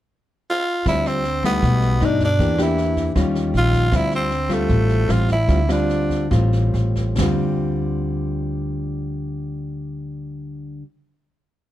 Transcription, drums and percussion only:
0.86 kick, cross-stick, snare
1.05 snare
1.24 snare
1.44 kick, cross-stick, snare
1.63 kick, snare
1.82 snare
2.01 cross-stick, snare
2.20 kick, snare
2.40 kick, snare
2.58 cross-stick, snare
2.78 snare
2.97 kick, snare
3.16 kick, cross-stick, snare
3.35 snare
3.54 snare
3.73 kick, snare
3.92 kick, cross-stick, snare
4.11 snare
4.31 snare
4.50 kick, cross-stick, snare
4.69 kick, snare
4.89 snare
5.09 cross-stick, snare
5.28 kick, snare
5.48 kick, snare
5.69 cross-stick, snare
5.90 snare
6.10 kick, snare
6.31 kick, cross-stick, snare
6.53 snare
6.74 snare
6.96 kick, snare
7.18 snare, floor tom, open hi-hat

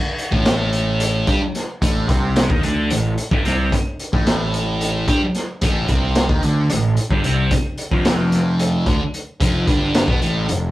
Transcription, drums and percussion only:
0.19 closed hi-hat
0.32 kick
0.45 snare, closed hi-hat
0.73 closed hi-hat
1.00 closed hi-hat
1.27 kick, closed hi-hat
1.55 snare, closed hi-hat
1.82 kick, closed hi-hat
2.09 kick, snare, closed hi-hat
2.36 snare, closed hi-hat
2.50 kick
2.63 closed hi-hat
2.90 closed hi-hat
3.18 closed hi-hat
3.31 kick
3.45 snare, closed hi-hat
3.72 kick, closed hi-hat
4.00 closed hi-hat
4.13 kick
4.26 snare, closed hi-hat
4.54 closed hi-hat
4.81 closed hi-hat
5.08 kick, snare, closed hi-hat
5.35 snare, closed hi-hat
5.61 kick, closed hi-hat
5.88 kick, closed hi-hat
6.15 snare, closed hi-hat
6.29 kick
6.43 closed hi-hat
6.70 closed hi-hat
6.97 closed hi-hat
7.11 kick
7.24 closed hi-hat
7.51 kick, closed hi-hat
7.78 closed hi-hat
7.91 kick
8.05 snare, closed hi-hat
8.32 snare, closed hi-hat
8.59 closed hi-hat
8.86 kick, closed hi-hat
9.14 closed hi-hat
9.41 kick, closed hi-hat
9.68 kick, closed hi-hat
9.95 snare, closed hi-hat
10.08 kick
10.22 closed hi-hat
10.49 closed hi-hat

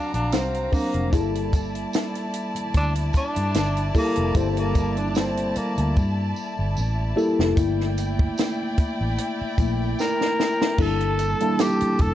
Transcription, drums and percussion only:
0.14 closed hi-hat
0.32 snare, closed hi-hat, tambourine
0.54 closed hi-hat
0.73 kick, open hi-hat, tambourine
0.94 closed hi-hat
1.13 kick, closed hi-hat, tambourine
1.35 closed hi-hat
1.53 kick, closed hi-hat, tambourine
1.75 closed hi-hat
1.93 snare, closed hi-hat, tambourine
2.15 closed hi-hat
2.33 closed hi-hat, tambourine
2.56 closed hi-hat
2.74 kick, closed hi-hat, tambourine
2.95 closed hi-hat
3.13 kick, closed hi-hat, tambourine
3.36 closed hi-hat
3.54 snare, closed hi-hat, tambourine
3.77 closed hi-hat
3.95 kick, open hi-hat, tambourine
4.16 closed hi-hat
4.35 kick, closed hi-hat, tambourine
4.57 closed hi-hat
4.75 kick, closed hi-hat, tambourine
4.97 closed hi-hat
5.15 snare, closed hi-hat, tambourine
5.37 closed hi-hat
5.55 closed hi-hat, tambourine
5.78 closed hi-hat
5.97 kick, tambourine
6.36 tambourine
6.77 tambourine
7.18 tambourine
7.40 snare
7.57 kick, closed hi-hat, tambourine
7.81 snare
7.98 closed hi-hat, tambourine
8.19 kick
8.38 snare, closed hi-hat, tambourine
8.78 kick, closed hi-hat, tambourine
9.18 closed hi-hat
9.58 kick, closed hi-hat, tambourine
9.99 snare, tambourine
10.21 snare
10.40 snare, tambourine
10.62 snare
10.78 kick, crash, tambourine
11.00 closed hi-hat
11.19 closed hi-hat, tambourine
11.40 closed hi-hat
11.59 snare, closed hi-hat, tambourine
11.80 closed hi-hat
11.99 kick, closed hi-hat, tambourine

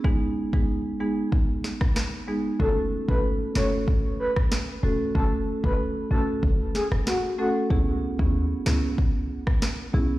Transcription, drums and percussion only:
0.04 kick
0.53 kick
1.32 kick
1.64 snare
1.81 kick, cross-stick
1.96 cross-stick, snare
2.60 kick
3.09 kick
3.55 cross-stick, snare
3.88 kick
4.36 kick, cross-stick
4.52 cross-stick, snare
5.15 kick
5.64 kick
6.43 kick
6.75 snare
6.92 cross-stick
7.07 cross-stick, snare
7.70 kick
8.19 kick
8.66 cross-stick, snare
8.98 kick
9.47 kick, cross-stick
9.62 cross-stick, snare

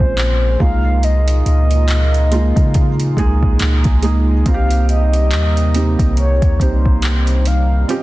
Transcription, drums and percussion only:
0.00 kick
0.18 clap
0.60 kick
1.03 closed hi-hat
1.28 closed hi-hat
1.46 closed hi-hat
1.71 closed hi-hat
1.88 clap, closed hi-hat
2.14 closed hi-hat
2.32 closed hi-hat
2.56 kick, closed hi-hat
2.74 kick, closed hi-hat
3.00 closed hi-hat
3.17 kick, closed hi-hat
3.43 kick
3.59 clap, closed hi-hat
3.84 kick, closed hi-hat
4.03 closed hi-hat
4.46 kick, closed hi-hat
4.71 closed hi-hat
4.89 closed hi-hat
5.13 closed hi-hat
5.31 clap, closed hi-hat
5.57 closed hi-hat
5.75 closed hi-hat
5.99 kick, closed hi-hat
6.17 closed hi-hat
6.42 kick, closed hi-hat
6.60 kick, closed hi-hat
6.86 kick
7.02 clap, closed hi-hat
7.27 closed hi-hat
7.46 closed hi-hat
7.89 closed hi-hat

